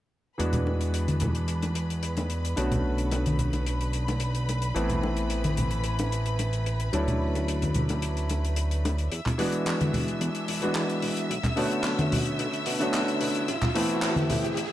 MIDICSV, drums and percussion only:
0, 0, Header, 1, 2, 480
1, 0, Start_track
1, 0, Tempo, 545455
1, 344, Time_signature, 4, 2, 24, 8
1, 12956, End_track
2, 0, Start_track
2, 0, Title_t, "Drums"
2, 349, Note_on_c, 9, 42, 80
2, 437, Note_off_c, 9, 42, 0
2, 465, Note_on_c, 9, 42, 52
2, 467, Note_on_c, 9, 64, 70
2, 553, Note_off_c, 9, 42, 0
2, 555, Note_off_c, 9, 64, 0
2, 587, Note_on_c, 9, 60, 49
2, 675, Note_off_c, 9, 60, 0
2, 710, Note_on_c, 9, 42, 51
2, 798, Note_off_c, 9, 42, 0
2, 826, Note_on_c, 9, 42, 92
2, 914, Note_off_c, 9, 42, 0
2, 951, Note_on_c, 9, 42, 49
2, 954, Note_on_c, 9, 63, 76
2, 1039, Note_off_c, 9, 42, 0
2, 1042, Note_off_c, 9, 63, 0
2, 1056, Note_on_c, 9, 42, 69
2, 1070, Note_on_c, 9, 60, 71
2, 1076, Note_on_c, 9, 64, 77
2, 1144, Note_off_c, 9, 42, 0
2, 1158, Note_off_c, 9, 60, 0
2, 1164, Note_off_c, 9, 64, 0
2, 1186, Note_on_c, 9, 42, 50
2, 1274, Note_off_c, 9, 42, 0
2, 1302, Note_on_c, 9, 42, 79
2, 1390, Note_off_c, 9, 42, 0
2, 1430, Note_on_c, 9, 42, 52
2, 1432, Note_on_c, 9, 60, 45
2, 1518, Note_off_c, 9, 42, 0
2, 1520, Note_off_c, 9, 60, 0
2, 1543, Note_on_c, 9, 42, 73
2, 1631, Note_off_c, 9, 42, 0
2, 1675, Note_on_c, 9, 42, 45
2, 1763, Note_off_c, 9, 42, 0
2, 1784, Note_on_c, 9, 42, 81
2, 1872, Note_off_c, 9, 42, 0
2, 1907, Note_on_c, 9, 42, 49
2, 1914, Note_on_c, 9, 60, 67
2, 1995, Note_off_c, 9, 42, 0
2, 2002, Note_off_c, 9, 60, 0
2, 2022, Note_on_c, 9, 42, 63
2, 2110, Note_off_c, 9, 42, 0
2, 2154, Note_on_c, 9, 42, 54
2, 2242, Note_off_c, 9, 42, 0
2, 2263, Note_on_c, 9, 42, 94
2, 2268, Note_on_c, 9, 60, 49
2, 2351, Note_off_c, 9, 42, 0
2, 2356, Note_off_c, 9, 60, 0
2, 2391, Note_on_c, 9, 42, 49
2, 2391, Note_on_c, 9, 64, 73
2, 2479, Note_off_c, 9, 42, 0
2, 2479, Note_off_c, 9, 64, 0
2, 2624, Note_on_c, 9, 42, 49
2, 2712, Note_off_c, 9, 42, 0
2, 2741, Note_on_c, 9, 42, 78
2, 2747, Note_on_c, 9, 60, 72
2, 2829, Note_off_c, 9, 42, 0
2, 2835, Note_off_c, 9, 60, 0
2, 2868, Note_on_c, 9, 42, 48
2, 2877, Note_on_c, 9, 63, 80
2, 2956, Note_off_c, 9, 42, 0
2, 2965, Note_off_c, 9, 63, 0
2, 2982, Note_on_c, 9, 42, 62
2, 2983, Note_on_c, 9, 64, 67
2, 3070, Note_off_c, 9, 42, 0
2, 3071, Note_off_c, 9, 64, 0
2, 3107, Note_on_c, 9, 42, 50
2, 3109, Note_on_c, 9, 60, 46
2, 3195, Note_off_c, 9, 42, 0
2, 3197, Note_off_c, 9, 60, 0
2, 3225, Note_on_c, 9, 42, 83
2, 3313, Note_off_c, 9, 42, 0
2, 3350, Note_on_c, 9, 42, 45
2, 3438, Note_off_c, 9, 42, 0
2, 3460, Note_on_c, 9, 42, 63
2, 3548, Note_off_c, 9, 42, 0
2, 3593, Note_on_c, 9, 42, 46
2, 3595, Note_on_c, 9, 60, 65
2, 3681, Note_off_c, 9, 42, 0
2, 3683, Note_off_c, 9, 60, 0
2, 3695, Note_on_c, 9, 42, 81
2, 3783, Note_off_c, 9, 42, 0
2, 3825, Note_on_c, 9, 42, 52
2, 3913, Note_off_c, 9, 42, 0
2, 3949, Note_on_c, 9, 42, 68
2, 3951, Note_on_c, 9, 60, 42
2, 4037, Note_off_c, 9, 42, 0
2, 4039, Note_off_c, 9, 60, 0
2, 4064, Note_on_c, 9, 42, 52
2, 4152, Note_off_c, 9, 42, 0
2, 4187, Note_on_c, 9, 42, 81
2, 4275, Note_off_c, 9, 42, 0
2, 4308, Note_on_c, 9, 42, 47
2, 4312, Note_on_c, 9, 64, 63
2, 4396, Note_off_c, 9, 42, 0
2, 4400, Note_off_c, 9, 64, 0
2, 4430, Note_on_c, 9, 60, 69
2, 4518, Note_off_c, 9, 60, 0
2, 4546, Note_on_c, 9, 42, 49
2, 4634, Note_off_c, 9, 42, 0
2, 4663, Note_on_c, 9, 42, 89
2, 4751, Note_off_c, 9, 42, 0
2, 4788, Note_on_c, 9, 42, 49
2, 4793, Note_on_c, 9, 63, 71
2, 4797, Note_on_c, 9, 60, 44
2, 4876, Note_off_c, 9, 42, 0
2, 4881, Note_off_c, 9, 63, 0
2, 4885, Note_off_c, 9, 60, 0
2, 4904, Note_on_c, 9, 42, 68
2, 4910, Note_on_c, 9, 64, 67
2, 4992, Note_off_c, 9, 42, 0
2, 4998, Note_off_c, 9, 64, 0
2, 5022, Note_on_c, 9, 42, 48
2, 5110, Note_off_c, 9, 42, 0
2, 5136, Note_on_c, 9, 42, 77
2, 5224, Note_off_c, 9, 42, 0
2, 5269, Note_on_c, 9, 42, 51
2, 5277, Note_on_c, 9, 60, 61
2, 5357, Note_off_c, 9, 42, 0
2, 5365, Note_off_c, 9, 60, 0
2, 5388, Note_on_c, 9, 42, 65
2, 5476, Note_off_c, 9, 42, 0
2, 5506, Note_on_c, 9, 42, 52
2, 5594, Note_off_c, 9, 42, 0
2, 5623, Note_on_c, 9, 42, 81
2, 5626, Note_on_c, 9, 60, 45
2, 5711, Note_off_c, 9, 42, 0
2, 5714, Note_off_c, 9, 60, 0
2, 5746, Note_on_c, 9, 42, 48
2, 5834, Note_off_c, 9, 42, 0
2, 5864, Note_on_c, 9, 42, 72
2, 5952, Note_off_c, 9, 42, 0
2, 5982, Note_on_c, 9, 42, 50
2, 6070, Note_off_c, 9, 42, 0
2, 6100, Note_on_c, 9, 42, 85
2, 6105, Note_on_c, 9, 60, 64
2, 6188, Note_off_c, 9, 42, 0
2, 6193, Note_off_c, 9, 60, 0
2, 6228, Note_on_c, 9, 64, 69
2, 6231, Note_on_c, 9, 42, 45
2, 6316, Note_off_c, 9, 64, 0
2, 6319, Note_off_c, 9, 42, 0
2, 6471, Note_on_c, 9, 42, 45
2, 6477, Note_on_c, 9, 60, 43
2, 6559, Note_off_c, 9, 42, 0
2, 6565, Note_off_c, 9, 60, 0
2, 6586, Note_on_c, 9, 42, 87
2, 6674, Note_off_c, 9, 42, 0
2, 6708, Note_on_c, 9, 42, 52
2, 6714, Note_on_c, 9, 63, 81
2, 6796, Note_off_c, 9, 42, 0
2, 6802, Note_off_c, 9, 63, 0
2, 6815, Note_on_c, 9, 42, 67
2, 6825, Note_on_c, 9, 64, 75
2, 6903, Note_off_c, 9, 42, 0
2, 6913, Note_off_c, 9, 64, 0
2, 6944, Note_on_c, 9, 42, 51
2, 6952, Note_on_c, 9, 60, 64
2, 7032, Note_off_c, 9, 42, 0
2, 7040, Note_off_c, 9, 60, 0
2, 7060, Note_on_c, 9, 42, 93
2, 7148, Note_off_c, 9, 42, 0
2, 7188, Note_on_c, 9, 42, 44
2, 7276, Note_off_c, 9, 42, 0
2, 7300, Note_on_c, 9, 42, 67
2, 7309, Note_on_c, 9, 60, 48
2, 7388, Note_off_c, 9, 42, 0
2, 7397, Note_off_c, 9, 60, 0
2, 7433, Note_on_c, 9, 42, 50
2, 7521, Note_off_c, 9, 42, 0
2, 7536, Note_on_c, 9, 42, 89
2, 7624, Note_off_c, 9, 42, 0
2, 7667, Note_on_c, 9, 42, 51
2, 7755, Note_off_c, 9, 42, 0
2, 7789, Note_on_c, 9, 42, 67
2, 7791, Note_on_c, 9, 60, 76
2, 7877, Note_off_c, 9, 42, 0
2, 7879, Note_off_c, 9, 60, 0
2, 7906, Note_on_c, 9, 42, 47
2, 7994, Note_off_c, 9, 42, 0
2, 8022, Note_on_c, 9, 42, 84
2, 8110, Note_off_c, 9, 42, 0
2, 8149, Note_on_c, 9, 39, 36
2, 8150, Note_on_c, 9, 64, 82
2, 8161, Note_on_c, 9, 42, 52
2, 8237, Note_off_c, 9, 39, 0
2, 8238, Note_off_c, 9, 64, 0
2, 8249, Note_off_c, 9, 42, 0
2, 8262, Note_on_c, 9, 46, 94
2, 8350, Note_off_c, 9, 46, 0
2, 8381, Note_on_c, 9, 42, 49
2, 8469, Note_off_c, 9, 42, 0
2, 8501, Note_on_c, 9, 42, 82
2, 8510, Note_on_c, 9, 39, 120
2, 8589, Note_off_c, 9, 42, 0
2, 8598, Note_off_c, 9, 39, 0
2, 8630, Note_on_c, 9, 42, 56
2, 8636, Note_on_c, 9, 63, 78
2, 8718, Note_off_c, 9, 42, 0
2, 8724, Note_off_c, 9, 63, 0
2, 8743, Note_on_c, 9, 64, 72
2, 8749, Note_on_c, 9, 46, 90
2, 8831, Note_off_c, 9, 64, 0
2, 8837, Note_off_c, 9, 46, 0
2, 8871, Note_on_c, 9, 42, 52
2, 8959, Note_off_c, 9, 42, 0
2, 8985, Note_on_c, 9, 42, 96
2, 9073, Note_off_c, 9, 42, 0
2, 9106, Note_on_c, 9, 42, 55
2, 9194, Note_off_c, 9, 42, 0
2, 9224, Note_on_c, 9, 46, 108
2, 9312, Note_off_c, 9, 46, 0
2, 9345, Note_on_c, 9, 42, 49
2, 9433, Note_off_c, 9, 42, 0
2, 9459, Note_on_c, 9, 39, 121
2, 9462, Note_on_c, 9, 42, 86
2, 9547, Note_off_c, 9, 39, 0
2, 9550, Note_off_c, 9, 42, 0
2, 9588, Note_on_c, 9, 42, 48
2, 9676, Note_off_c, 9, 42, 0
2, 9701, Note_on_c, 9, 46, 100
2, 9789, Note_off_c, 9, 46, 0
2, 9827, Note_on_c, 9, 42, 56
2, 9915, Note_off_c, 9, 42, 0
2, 9951, Note_on_c, 9, 42, 98
2, 10039, Note_off_c, 9, 42, 0
2, 10066, Note_on_c, 9, 64, 71
2, 10069, Note_on_c, 9, 39, 34
2, 10069, Note_on_c, 9, 42, 57
2, 10154, Note_off_c, 9, 64, 0
2, 10157, Note_off_c, 9, 39, 0
2, 10157, Note_off_c, 9, 42, 0
2, 10182, Note_on_c, 9, 46, 98
2, 10270, Note_off_c, 9, 46, 0
2, 10307, Note_on_c, 9, 42, 52
2, 10395, Note_off_c, 9, 42, 0
2, 10415, Note_on_c, 9, 39, 108
2, 10424, Note_on_c, 9, 42, 88
2, 10503, Note_off_c, 9, 39, 0
2, 10512, Note_off_c, 9, 42, 0
2, 10549, Note_on_c, 9, 42, 58
2, 10551, Note_on_c, 9, 63, 85
2, 10637, Note_off_c, 9, 42, 0
2, 10639, Note_off_c, 9, 63, 0
2, 10667, Note_on_c, 9, 46, 112
2, 10671, Note_on_c, 9, 64, 80
2, 10755, Note_off_c, 9, 46, 0
2, 10759, Note_off_c, 9, 64, 0
2, 10783, Note_on_c, 9, 42, 53
2, 10871, Note_off_c, 9, 42, 0
2, 10904, Note_on_c, 9, 42, 91
2, 10992, Note_off_c, 9, 42, 0
2, 11030, Note_on_c, 9, 42, 47
2, 11118, Note_off_c, 9, 42, 0
2, 11140, Note_on_c, 9, 46, 103
2, 11228, Note_off_c, 9, 46, 0
2, 11269, Note_on_c, 9, 42, 50
2, 11357, Note_off_c, 9, 42, 0
2, 11381, Note_on_c, 9, 42, 89
2, 11385, Note_on_c, 9, 39, 112
2, 11469, Note_off_c, 9, 42, 0
2, 11473, Note_off_c, 9, 39, 0
2, 11512, Note_on_c, 9, 42, 55
2, 11600, Note_off_c, 9, 42, 0
2, 11622, Note_on_c, 9, 46, 104
2, 11710, Note_off_c, 9, 46, 0
2, 11745, Note_on_c, 9, 42, 54
2, 11833, Note_off_c, 9, 42, 0
2, 11865, Note_on_c, 9, 42, 91
2, 11953, Note_off_c, 9, 42, 0
2, 11982, Note_on_c, 9, 42, 55
2, 11986, Note_on_c, 9, 64, 72
2, 11989, Note_on_c, 9, 39, 34
2, 12070, Note_off_c, 9, 42, 0
2, 12074, Note_off_c, 9, 64, 0
2, 12077, Note_off_c, 9, 39, 0
2, 12104, Note_on_c, 9, 46, 115
2, 12192, Note_off_c, 9, 46, 0
2, 12224, Note_on_c, 9, 42, 51
2, 12312, Note_off_c, 9, 42, 0
2, 12339, Note_on_c, 9, 39, 126
2, 12345, Note_on_c, 9, 42, 92
2, 12427, Note_off_c, 9, 39, 0
2, 12433, Note_off_c, 9, 42, 0
2, 12463, Note_on_c, 9, 63, 95
2, 12467, Note_on_c, 9, 42, 49
2, 12551, Note_off_c, 9, 63, 0
2, 12555, Note_off_c, 9, 42, 0
2, 12581, Note_on_c, 9, 46, 109
2, 12587, Note_on_c, 9, 64, 77
2, 12669, Note_off_c, 9, 46, 0
2, 12675, Note_off_c, 9, 64, 0
2, 12710, Note_on_c, 9, 42, 49
2, 12798, Note_off_c, 9, 42, 0
2, 12823, Note_on_c, 9, 42, 102
2, 12911, Note_off_c, 9, 42, 0
2, 12956, End_track
0, 0, End_of_file